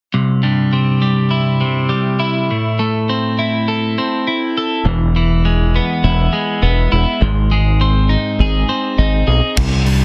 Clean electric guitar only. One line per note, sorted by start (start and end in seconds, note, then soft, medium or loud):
0.14 1.61 C2 medium
0.43 1.91 G2 medium
0.73 1.59 C3 medium
1.02 1.88 G3 medium
1.31 2.19 E4 medium
1.60 2.49 C3 medium
1.89 2.49 G3 medium
2.19 3.39 E4 medium
2.51 3.98 A2 medium
2.79 4.27 A3 medium
3.09 3.97 C4 medium
3.39 4.26 E4 medium
3.68 4.56 A4 medium
3.98 4.86 C4 medium
4.27 4.86 E4 medium
4.58 4.86 A4 medium
4.86 6.33 E2 medium
5.16 6.63 E3 medium
5.45 6.32 G#3 medium
5.76 6.61 B3 medium
6.04 6.91 E4 medium
6.33 7.21 G#3 medium
6.62 7.22 B3 medium
6.92 7.22 E4 medium
7.22 8.69 G#2 medium
7.51 8.99 G#3 medium
7.81 8.68 C4 medium
8.09 8.97 D#4 medium
8.40 9.26 G#4 medium
8.69 9.58 C4 medium
8.98 9.58 D#4 medium
9.27 9.57 G#4 medium
9.57 10.05 C2 medium
9.87 10.05 G2 medium